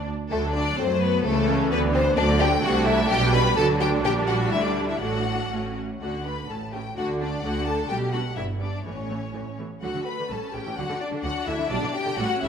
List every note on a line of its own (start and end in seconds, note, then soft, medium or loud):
0.31 0.75 D2 medium
0.31 0.75 D3 medium
0.31 0.75 F#3 medium
0.31 0.39 A3 medium
0.31 0.75 D4 medium
0.31 0.53 A4 loud
0.54 0.77 D4 medium
0.54 0.77 D5 loud
0.77 1.24 F#2 medium
0.77 1.24 F#3 medium
0.77 1.23 A3 medium
0.77 0.85 C4 medium
0.77 1.01 C5 loud
1.01 1.24 B3 medium
1.01 1.25 B4 loud
1.24 1.70 C#2 loud
1.24 1.71 C#3 loud
1.24 2.17 E3 medium
1.24 1.47 A3 medium
1.24 1.71 A3 loud
1.24 1.71 A4 loud
1.48 1.71 C#4 medium
1.71 2.16 D2 loud
1.71 2.16 D3 loud
1.71 1.79 B3 loud
1.71 2.17 B3 loud
1.71 1.80 B4 loud
1.94 2.02 C4 loud
1.94 2.17 C5 loud
2.16 2.63 D2 loud
2.16 2.63 D3 loud
2.16 2.62 F#3 loud
2.16 2.62 A3 loud
2.16 2.24 D4 loud
2.16 2.39 D5 loud
2.39 2.47 G4 loud
2.39 2.64 G5 loud
2.62 3.10 C2 loud
2.62 3.10 C3 loud
2.62 3.10 A3 loud
2.62 3.55 D4 loud
2.62 2.86 F#4 loud
2.62 2.87 F#5 loud
2.86 3.10 E4 loud
2.86 3.10 E5 loud
3.09 3.56 B1 loud
3.09 3.57 B2 loud
3.09 3.57 G3 loud
3.09 3.33 G4 loud
3.09 3.34 G5 loud
3.34 3.57 B4 loud
3.34 3.58 B5 loud
3.57 4.03 D2 loud
3.57 4.04 D3 loud
3.57 4.04 F#3 loud
3.57 4.99 D4 loud
3.57 3.65 A4 loud
3.57 3.65 A5 loud
3.80 3.88 G4 loud
3.80 3.89 G5 loud
4.04 4.52 A#1 medium
4.04 4.52 A#2 loud
4.04 5.02 G3 loud
4.04 4.13 G4 loud
4.04 4.13 G5 loud
4.28 4.52 F#4 medium
4.28 4.36 F#5 loud
4.51 5.01 D2 medium
4.51 5.01 D3 medium
4.51 4.64 E4 medium
4.51 4.64 E5 loud
4.64 4.88 D4 medium
4.64 4.89 D5 medium
4.89 5.01 E4 medium
4.89 5.02 E5 medium
5.01 5.51 A1 medium
5.01 5.51 A2 medium
5.01 5.50 A3 medium
5.01 5.51 D4 medium
5.01 5.76 F#4 medium
5.01 5.77 F#5 medium
5.52 6.01 A1 medium
5.52 6.01 A2 medium
5.52 5.60 A3 medium
5.52 5.81 C#4 medium
6.01 6.44 D2 medium
6.01 6.44 D3 medium
6.01 6.10 A3 medium
6.01 6.10 D4 soft
6.01 6.24 F#4 medium
6.01 6.24 F#5 medium
6.25 6.34 A3 soft
6.25 6.33 D4 soft
6.25 6.49 B4 medium
6.25 6.50 B5 medium
6.49 6.91 A1 medium
6.49 6.92 A2 medium
6.49 6.58 A3 medium
6.49 6.58 C#4 medium
6.49 6.57 A4 medium
6.49 6.74 A5 medium
6.72 6.82 A3 soft
6.72 6.82 C#4 medium
6.72 6.80 G4 medium
6.72 6.97 G5 medium
6.96 7.38 D2 medium
6.96 7.39 D3 medium
6.96 7.05 A3 medium
6.96 7.05 D4 medium
6.96 7.19 F#4 medium
6.96 7.06 F#5 medium
7.20 7.29 A3 medium
7.20 7.43 D4 medium
7.20 7.29 D4 medium
7.20 7.44 D5 medium
7.43 7.84 D2 medium
7.43 7.84 D3 medium
7.43 7.52 A3 medium
7.43 7.52 D4 medium
7.43 7.67 F#4 medium
7.43 7.67 F#5 loud
7.66 7.75 A3 medium
7.66 7.75 D4 medium
7.66 7.90 A4 medium
7.66 7.90 A5 medium
7.89 8.31 B1 medium
7.89 8.31 B2 medium
7.89 7.98 G3 medium
7.89 7.98 D4 medium
7.89 8.13 G4 medium
7.89 7.97 G5 loud
8.11 8.21 G3 medium
8.11 8.21 D4 medium
8.11 8.21 F#4 medium
8.11 8.35 F#5 medium
8.36 8.80 G1 medium
8.36 8.80 G2 medium
8.36 8.45 G3 medium
8.36 8.45 B3 medium
8.36 8.45 E4 medium
8.36 8.44 E5 medium
8.60 8.69 G3 soft
8.60 8.69 B3 soft
8.60 8.85 D4 medium
8.60 8.85 D5 medium
8.85 9.29 A1 medium
8.85 9.29 A2 medium
8.85 8.93 E3 soft
8.85 8.93 A3 soft
8.85 9.57 C#4 medium
8.85 9.57 C#5 medium
9.09 9.17 E3 soft
9.09 9.17 A3 soft
9.34 9.77 A1 soft
9.34 9.42 A2 soft
9.34 9.42 E3 soft
9.34 9.42 A3 soft
9.58 9.67 B2 medium
9.58 9.66 E3 soft
9.58 9.66 A3 soft
9.82 9.88 D2 medium
9.82 9.88 D3 medium
9.82 9.87 F#3 medium
9.82 10.27 A3 medium
9.82 10.05 F#4 medium
9.82 10.05 F#5 medium
9.95 9.99 D3 medium
9.95 10.00 D3 soft
10.06 10.30 B4 medium
10.06 10.30 B5 medium
10.19 10.23 D3 soft
10.19 10.24 D3 soft
10.30 10.35 A1 medium
10.30 10.35 A2 medium
10.30 10.35 G3 medium
10.30 10.77 C#4 medium
10.30 10.54 A4 medium
10.30 10.54 A5 medium
10.53 10.59 A1 medium
10.53 10.59 A2 soft
10.53 10.59 C#3 medium
10.53 10.77 G4 medium
10.53 10.77 G5 medium
10.66 10.70 A2 medium
10.66 10.70 E3 medium
10.77 10.82 D2 medium
10.77 10.82 D3 medium
10.77 10.82 F#3 medium
10.77 12.18 D4 medium
10.77 11.00 F#4 medium
10.77 11.01 F#5 medium
10.89 10.94 D3 medium
11.00 11.24 D4 medium
11.00 11.08 D5 medium
11.12 11.17 D3 medium
11.23 11.28 D2 medium
11.23 11.29 D3 medium
11.23 11.29 F#3 medium
11.23 11.47 F#4 medium
11.23 11.47 F#5 loud
11.47 11.52 D2 medium
11.47 11.51 D3 medium
11.47 11.53 D3 medium
11.47 11.70 E4 medium
11.47 11.71 E5 loud
11.59 11.63 D3 medium
11.59 11.64 D3 medium
11.70 11.75 B1 medium
11.70 11.75 B2 loud
11.70 11.76 G3 medium
11.70 11.94 D4 loud
11.70 11.94 D5 loud
11.82 11.87 B2 medium
11.82 11.88 D3 medium
11.94 12.18 G4 medium
11.94 12.18 G5 loud
12.06 12.11 B2 medium
12.06 12.11 D3 medium
12.17 12.22 A1 medium
12.17 12.23 A2 loud
12.17 12.23 G3 loud
12.17 12.48 C#4 medium
12.17 12.42 F#4 loud
12.17 12.42 F#5 loud
12.42 12.47 A1 medium
12.42 12.47 A2 medium
12.42 12.48 C#3 medium
12.42 12.48 E4 medium
12.42 12.48 E5 loud